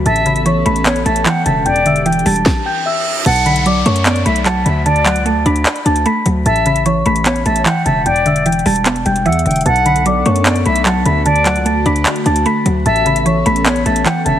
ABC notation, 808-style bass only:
X:1
M:4/4
L:1/16
Q:1/4=150
K:Bm
V:1 name="808-style bass" clef=bass
A,,,6 A,,,4 A,,,2 z2 E,,,2- | E,,,6 E,,,2 z8 | B,,,6 F,,4 B,,,4 D,,2- | D,,3 C,,3/2 D,,3/2 D,,2 z2 D,,2 z2 D,,2 |
A,,,6 A,,,4 A,,,2 z2 E,,,2- | E,,,6 E,,,4 E,,,2 E,,2 E,,,2 | B,,,6 F,,4 B,,,4 D,,2- | D,,3 C,,3/2 D,,3/2 D,,2 z2 D,,2 z2 D,,2 |
A,,,6 A,,,4 A,,,2 z2 E,,,2 |]